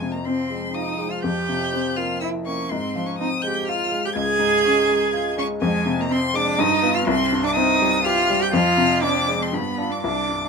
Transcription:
Already playing: grand piano F2, cello G#3, violin G#5
0.02 grand piano C3
0.12 cello A#3, violin A#5
0.25 cello C4, grand piano C4, violin C6
0.50 grand piano G#3
0.75 cello D#4, grand piano F4, violin D#6
0.98 grand piano G#3
1.11 cello F4, violin F6
1.23 grand piano F2, cello G4, violin G6
1.49 grand piano C3
1.73 grand piano C4
1.96 grand piano A#3, cello F4, violin F6
2.20 cello E4, grand piano E4, violin E6
2.45 grand piano A#3, cello C#4, violin C#6
2.69 grand piano G#2, cello C4, violin C6
2.95 grand piano F3
3.06 cello C#4, violin C#6
3.19 grand piano C4, cello D#4, violin D#6
3.42 grand piano G#3, cello G4, violin G6
3.68 grand piano F4, cello F4, violin F6
3.92 grand piano G#3
4.05 cello G4, violin G6
4.16 grand piano C#2, cello G#4, violin G#6
4.39 grand piano G#2
4.65 grand piano C#4
4.89 grand piano G#3
5.13 grand piano F4
5.37 grand piano G#3, cello C#4, violin C#6
5.61 grand piano F2, cello G#3, violin G#5
5.86 grand piano C3
5.98 cello A#3, violin A#5
6.10 cello C4, grand piano C4, violin C6
6.34 grand piano G#3, cello D4, violin D6
6.58 grand piano G2, cello D#4, violin D#6
6.83 grand piano B3 F4
6.95 cello F4, violin F6
7.07 grand piano C2, cello C4, violin C6
7.32 grand piano G2
7.44 cello D4, violin D6
7.56 grand piano C4, cello D#4, violin D#6
7.82 grand piano G3
8.05 cello F4, grand piano G4, violin F6
8.30 grand piano G3
8.42 cello G4, violin G6
8.53 grand piano F2, cello F4, violin F6
8.77 grand piano C3
9.03 grand piano C4, cello D4, violin D6
9.28 grand piano G#3
9.40 cello C4, violin C6
9.52 grand piano G2, cello B3, violin B5
9.78 grand piano D4 F4
9.90 cello D4, violin D6
10.02 grand piano C2, cello D4, violin D6
10.29 grand piano G2

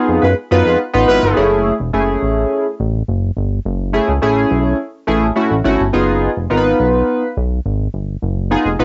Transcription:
Already playing: analog polysynth B3 D#4 F4 G#4
0.08 analog synth bass F2
0.22 analog synth bass F#2, horn section G#3 F4 B4
0.51 analog synth bass F#2, analog polysynth B3 D#4 F4 B4
0.65 analog synth bass F2, horn section G#3 F4 B4
0.93 analog synth bass A1, analog polysynth B3 D#4 F4 B4
1.08 analog synth bass G#1, horn section F#3 E4 B4
1.23 analog synth bass G1
1.36 analog synth bass F#1, analog polysynth A3 C#4 E4 G#4
1.80 analog synth bass E1
1.93 analog synth bass F#1, analog polysynth A3 C#4 E4 G#4
2.23 analog synth bass A1
2.80 analog synth bass A1
3.08 analog synth bass F#1
3.37 analog synth bass G1
3.65 analog synth bass F#1
3.93 analog polysynth A3 C#4 E4 G#4
4.08 analog synth bass C#2
4.22 analog synth bass A1, analog polysynth A3 C#4 E4 G#4
4.51 analog synth bass B1
5.07 analog synth bass A1, analog polysynth A3 C#4 E4 G#4
5.36 analog polysynth A3 C#4 E4 F#4
5.51 analog synth bass A1
5.64 analog synth bass G#1, analog polysynth A3 C#4 E4 F#4
5.80 analog synth bass G1
5.93 analog synth bass F#1, analog polysynth B3 D#4 F4 G#4
6.37 analog synth bass F1
6.50 analog synth bass G#1, analog polysynth B3 D#4 F4 A#4
6.57 analog polysynth B4
6.80 analog synth bass B1
7.37 analog synth bass B1
7.66 analog synth bass G#1
7.94 analog synth bass G1
8.22 analog synth bass F#1
8.51 analog polysynth B3 D#4 F4 G#4
8.65 analog synth bass F1
8.79 analog synth bass E1, analog polysynth B3 D#4 F4 B4

